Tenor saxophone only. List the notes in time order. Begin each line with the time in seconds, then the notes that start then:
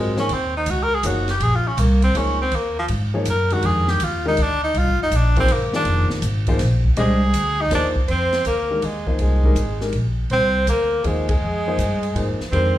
Already playing: G#3
0.20 C#4
0.34 C4
0.57 D#4
0.70 F#4
0.83 A#4
0.95 G#4
1.07 F#4
1.31 G4
1.43 G#4
1.56 F4
1.67 C#4
1.80 A#3
2.04 C4
2.17 C#4
2.42 C4
2.55 A#3
2.79 F3
3.30 A#4
3.53 F#4
3.66 G#4
3.89 G4
4.04 F4
4.28 D#4
4.42 D4
4.64 D#4
4.78 F4
5.03 D#4
5.16 D4
5.40 C4
5.53 A#3
5.76 D4
7.00 G#4
7.61 D#4
7.75 D4
8.11 C4
8.47 A#3
8.85 G#3
9.21 G#3
10.33 C4
10.69 A#3
11.06 G#3
11.31 G#3
12.52 C4